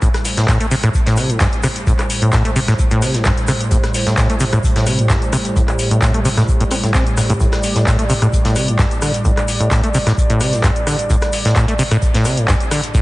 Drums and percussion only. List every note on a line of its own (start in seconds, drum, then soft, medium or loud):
0.02 kick loud
0.02 closed hi-hat medium
0.02 shaker soft
0.14 cross-stick medium
0.14 snare soft
0.14 closed hi-hat soft
0.14 shaker soft
0.24 snare soft
0.24 closed hi-hat medium
0.24 open hi-hat loud
0.24 shaker medium
0.37 snare soft
0.37 closed hi-hat medium
0.37 shaker soft
0.48 kick loud
0.48 cross-stick soft
0.48 snare loud
0.48 clap loud
0.48 closed hi-hat medium
0.48 shaker medium
0.60 closed hi-hat medium
0.60 shaker soft
0.71 closed hi-hat medium
0.71 open hi-hat loud
0.71 shaker medium
0.82 cross-stick medium
0.82 closed hi-hat medium
0.82 shaker soft
0.94 kick loud
0.94 closed hi-hat medium
0.94 shaker medium
1.06 snare medium
1.06 closed hi-hat medium
1.06 shaker soft
1.17 cross-stick soft
1.17 closed hi-hat medium
1.17 open hi-hat loud
1.17 shaker medium
1.30 closed hi-hat medium
1.30 shaker soft
1.40 kick loud
1.40 snare loud
1.40 clap loud
1.40 closed hi-hat medium
1.40 shaker medium
1.52 closed hi-hat soft
1.52 shaker soft
1.63 cross-stick medium
1.63 closed hi-hat medium
1.63 open hi-hat loud
1.63 shaker medium
1.76 closed hi-hat soft
1.76 closed hi-hat medium
1.76 shaker soft
1.87 kick loud
1.87 closed hi-hat medium
1.87 shaker soft
1.99 cross-stick medium
1.99 clap soft
1.99 closed hi-hat soft
1.99 shaker soft
2.10 closed hi-hat medium
2.10 open hi-hat loud
2.10 shaker loud
2.22 closed hi-hat medium
2.22 shaker soft
2.32 kick loud
2.32 cross-stick soft
2.32 snare loud
2.32 clap loud
2.32 closed hi-hat medium
2.32 shaker medium
2.45 closed hi-hat medium
2.45 shaker soft
2.56 closed hi-hat medium
2.56 open hi-hat loud
2.56 shaker medium
2.68 cross-stick medium
2.68 snare soft
2.68 closed hi-hat medium
2.68 shaker soft
2.79 kick loud
2.79 closed hi-hat medium
2.79 shaker medium
2.91 closed hi-hat medium
2.91 shaker soft
3.02 cross-stick soft
3.02 closed hi-hat medium
3.02 open hi-hat loud
3.02 shaker medium
3.14 snare soft
3.14 closed hi-hat medium
3.14 shaker soft
3.24 kick loud
3.24 snare loud
3.24 clap loud
3.24 closed hi-hat medium
3.24 shaker medium
3.37 closed hi-hat soft
3.37 shaker soft
3.48 cross-stick medium
3.48 closed hi-hat medium
3.48 open hi-hat loud
3.48 shaker medium
3.60 closed hi-hat medium
3.60 shaker soft
3.71 kick loud
3.71 closed hi-hat medium
3.71 shaker medium
3.83 cross-stick medium
3.83 snare soft
3.83 closed hi-hat soft
3.83 shaker soft
3.94 snare soft
3.94 closed hi-hat medium
3.94 open hi-hat loud
3.94 shaker medium
4.06 snare soft
4.06 closed hi-hat medium
4.06 shaker soft
4.17 kick loud
4.17 cross-stick soft
4.17 snare loud
4.17 clap loud
4.17 closed hi-hat loud
4.17 shaker medium
4.30 closed hi-hat medium
4.30 shaker soft
4.40 closed hi-hat medium
4.40 open hi-hat loud
4.40 shaker loud
4.53 cross-stick medium
4.53 closed hi-hat medium
4.53 shaker soft
4.63 kick loud
4.63 closed hi-hat medium
4.63 shaker medium
4.76 snare soft
4.76 closed hi-hat medium
4.76 shaker soft
4.87 cross-stick soft
4.87 closed hi-hat medium
4.87 open hi-hat loud
4.87 shaker medium
4.99 closed hi-hat medium
4.99 shaker soft
5.09 kick loud
5.09 snare loud
5.09 clap loud
5.09 closed hi-hat medium
5.09 shaker medium
5.22 closed hi-hat soft
5.22 shaker soft
5.32 cross-stick medium
5.32 closed hi-hat medium
5.32 open hi-hat loud
5.32 shaker loud
5.45 closed hi-hat soft
5.45 closed hi-hat medium
5.45 shaker soft
5.56 kick loud
5.56 closed hi-hat medium
5.56 shaker medium
5.68 cross-stick medium
5.68 clap soft
5.68 closed hi-hat soft
5.68 shaker soft
5.79 closed hi-hat medium
5.79 open hi-hat loud
5.79 shaker medium
5.91 closed hi-hat medium
5.91 shaker soft
6.02 kick loud
6.02 cross-stick soft
6.02 snare loud
6.02 clap loud
6.02 closed hi-hat medium
6.02 shaker medium
6.14 closed hi-hat soft
6.14 shaker soft
6.25 closed hi-hat medium
6.25 open hi-hat loud
6.25 shaker medium
6.37 cross-stick medium
6.37 snare soft
6.37 closed hi-hat medium
6.37 shaker soft
6.48 kick loud
6.48 closed hi-hat medium
6.48 shaker medium
6.60 closed hi-hat soft
6.60 shaker soft
6.70 cross-stick soft
6.70 closed hi-hat medium
6.70 open hi-hat loud
6.70 shaker medium
6.84 snare soft
6.84 closed hi-hat medium
6.84 shaker soft
6.94 kick loud
6.94 snare loud
6.94 clap loud
6.94 closed hi-hat medium
6.94 shaker soft
7.06 closed hi-hat soft
7.06 shaker soft
7.17 cross-stick medium
7.17 closed hi-hat medium
7.17 open hi-hat loud
7.17 shaker medium
7.30 closed hi-hat medium
7.30 shaker soft
7.40 kick loud
7.40 closed hi-hat medium
7.40 shaker medium
7.52 cross-stick medium
7.52 snare soft
7.52 closed hi-hat soft
7.52 shaker soft
7.63 snare soft
7.63 closed hi-hat medium
7.63 open hi-hat loud
7.63 shaker medium
7.76 snare medium
7.76 closed hi-hat medium
7.76 shaker soft
7.87 kick loud
7.87 cross-stick soft
7.87 snare loud
7.87 clap loud
7.87 closed hi-hat medium
7.87 shaker soft
7.99 closed hi-hat medium
7.99 shaker soft
8.10 closed hi-hat medium
8.10 open hi-hat loud
8.10 shaker medium
8.22 cross-stick medium
8.22 closed hi-hat medium
8.22 shaker soft
8.33 kick loud
8.33 closed hi-hat medium
8.33 shaker medium
8.45 snare medium
8.45 closed hi-hat medium
8.45 shaker soft
8.56 cross-stick soft
8.56 closed hi-hat medium
8.56 open hi-hat loud
8.56 shaker medium
8.68 closed hi-hat medium
8.68 shaker soft
8.79 kick loud
8.79 snare loud
8.79 clap loud
8.79 closed hi-hat medium
8.79 shaker medium
8.91 closed hi-hat soft
8.91 shaker soft
9.02 cross-stick medium
9.02 closed hi-hat medium
9.02 open hi-hat loud
9.02 shaker loud
9.14 closed hi-hat medium
9.14 closed hi-hat soft
9.14 shaker soft
9.25 kick loud
9.25 closed hi-hat medium
9.25 shaker soft
9.37 cross-stick medium
9.37 clap soft
9.37 closed hi-hat soft
9.37 shaker soft
9.48 closed hi-hat medium
9.48 open hi-hat loud
9.48 shaker medium
9.61 closed hi-hat medium
9.61 shaker soft
9.71 kick loud
9.71 cross-stick soft
9.71 snare loud
9.71 clap loud
9.71 closed hi-hat medium
9.71 shaker soft
9.83 closed hi-hat medium
9.83 shaker soft
9.94 closed hi-hat medium
9.94 open hi-hat loud
9.94 shaker medium
10.07 cross-stick medium
10.07 snare medium
10.07 closed hi-hat medium
10.07 shaker soft
10.17 kick loud
10.17 closed hi-hat medium
10.17 shaker medium
10.30 closed hi-hat medium
10.30 shaker soft
10.41 cross-stick soft
10.41 closed hi-hat medium
10.41 open hi-hat loud
10.41 shaker medium
10.52 snare soft
10.52 closed hi-hat medium
10.52 shaker soft
10.64 kick loud
10.64 snare loud
10.64 clap loud
10.64 closed hi-hat medium
10.64 shaker medium
10.75 closed hi-hat soft
10.75 shaker soft
10.87 cross-stick medium
10.87 closed hi-hat medium
10.87 open hi-hat loud
10.87 shaker medium
10.99 closed hi-hat medium
10.99 shaker soft
11.10 kick loud
11.10 closed hi-hat medium
11.10 shaker medium
11.21 cross-stick medium
11.21 snare soft
11.21 closed hi-hat soft
11.21 shaker soft
11.33 snare soft
11.33 closed hi-hat medium
11.33 open hi-hat loud
11.33 shaker medium
11.45 snare medium
11.45 closed hi-hat medium
11.45 shaker soft
11.55 kick loud
11.55 cross-stick soft
11.55 snare loud
11.55 clap loud
11.55 closed hi-hat medium
11.55 shaker soft
11.68 closed hi-hat medium
11.68 shaker soft
11.79 closed hi-hat medium
11.79 open hi-hat loud
11.79 shaker medium
11.91 cross-stick medium
11.91 closed hi-hat medium
11.91 shaker soft
12.02 kick loud
12.02 closed hi-hat medium
12.02 shaker medium
12.14 snare medium
12.14 closed hi-hat medium
12.14 shaker soft
12.25 cross-stick soft
12.25 closed hi-hat medium
12.25 open hi-hat loud
12.25 shaker medium
12.37 closed hi-hat medium
12.37 shaker soft
12.48 kick loud
12.48 snare loud
12.48 clap loud
12.48 closed hi-hat medium
12.48 shaker medium
12.60 closed hi-hat soft
12.60 shaker soft
12.71 cross-stick medium
12.71 closed hi-hat medium
12.71 open hi-hat loud
12.71 shaker medium
12.83 closed hi-hat soft
12.83 closed hi-hat medium
12.83 shaker soft
12.94 kick loud
12.94 closed hi-hat medium
12.94 shaker medium